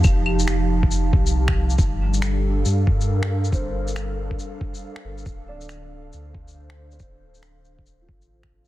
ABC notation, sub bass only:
X:1
M:4/4
L:1/8
Q:"Swing 16ths" 1/4=138
K:Gm
V:1 name="Sub bass" clef=bass
F,,,4- F,,, C,,2 C,, | G,,,4 G,, G,,3 | G,,,4 z3 G,,, | D,,,4 D,, D,,3 |
D,,,4- D,,, A,,,2 A,,, |]